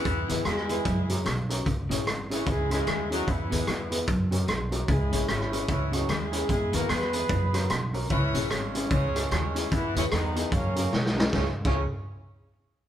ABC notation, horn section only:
X:1
M:4/4
L:1/16
Q:"Swing" 1/4=149
K:C#dor
V:1 name="Horn section"
[E,B,E]4 [G,EG]8 z4 | z6 [E,CE]2 [G,EG]2 [G,EG]4 [F,DF]2 | [E,B,E]8 z8 | [G,EG]4 [E,CE]4 [E,CE]2 [F,DF]2 [G,EG]4 |
[G,EG]2 [A,FA]2 [B,GB]8 z4 | [E,CE]4 [C,G,C]4 [C,G,C]4 [C,G,C]4 | [E,B,E]2 [E,CE]2 [D,B,D]4 [C,A,C]6 z2 | [C,C] z2 [C,C]2 z8 z3 |]